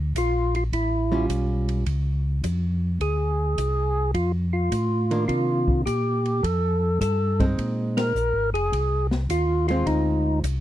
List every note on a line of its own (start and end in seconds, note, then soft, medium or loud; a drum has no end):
0.00 0.13 D2 medium
0.15 0.70 A#1 medium
0.15 0.55 F4 medium
0.15 kick soft
0.15 hi-hat pedal medium
0.15 ride medium
0.55 0.64 F4 medium
0.55 ride soft
0.72 1.28 A1 medium
0.72 1.26 E4 medium
0.72 kick soft
0.72 ride medium
1.12 1.83 G3 medium
1.12 1.83 C#4 medium
1.12 1.83 F4 medium
1.29 1.85 B1 medium
1.29 kick soft
1.29 hi-hat pedal medium
1.29 ride medium
1.69 ride soft
1.86 2.42 C#2 medium
1.86 kick soft
1.86 ride medium
2.43 2.99 F2 medium
2.43 kick soft
2.43 hi-hat pedal medium
2.43 ride medium
3.00 3.56 D2 medium
3.00 4.11 G#4 medium
3.00 kick soft
3.00 ride soft
3.57 4.13 C2 medium
3.57 kick soft
3.57 hi-hat pedal medium
3.57 ride medium
4.14 4.70 F2 medium
4.14 4.32 F4 medium
4.14 kick soft
4.14 ride medium
4.53 5.25 F4 medium
4.72 5.27 A2 medium
4.72 kick soft
4.72 hi-hat pedal soft
4.72 ride medium
5.11 5.83 D#3 medium
5.11 5.83 A#3 medium
5.11 5.83 D4 medium
5.11 ride soft
5.28 5.84 C3 medium
5.28 5.82 F4 medium
5.28 kick soft
5.28 ride soft
5.68 kick soft
5.86 6.42 A#2 medium
5.86 6.45 G4 medium
5.86 kick soft
5.86 hi-hat pedal soft
5.86 ride medium
6.25 ride soft
6.43 6.99 F2 medium
6.43 7.00 A4 loud
6.43 kick soft
6.43 ride medium
7.01 7.56 G2 medium
7.01 7.45 A4 medium
7.01 kick soft
7.01 hi-hat pedal medium
7.01 ride medium
7.40 8.11 G#3 medium
7.40 8.12 C4 medium
7.40 8.12 D#4 medium
7.40 kick soft
7.40 ride soft
7.58 8.13 A#2 medium
7.58 kick soft
7.58 ride medium
7.97 8.50 A#4 loud
7.97 snare medium
7.97 ride medium
8.15 8.33 A#1 medium
8.15 hi-hat pedal medium
8.34 8.53 G#1 medium
8.52 8.70 F1 medium
8.52 9.07 G#4 loud
8.52 ride soft
8.72 9.27 C2 medium
8.72 kick soft
8.72 ride medium
9.11 snare medium
9.29 9.84 D#2 medium
9.29 9.67 F4 loud
9.29 kick soft
9.29 hi-hat pedal medium
9.29 ride medium
9.68 10.41 G#3 soft
9.68 10.41 C4 medium
9.68 9.87 F4 medium
9.68 10.41 F4 medium
9.68 ride soft
9.86 10.42 D2 medium
9.86 10.40 D#4 medium
9.86 kick soft
9.86 ride medium
10.43 10.60 C2 medium
10.43 kick soft
10.43 hi-hat pedal medium
10.43 ride medium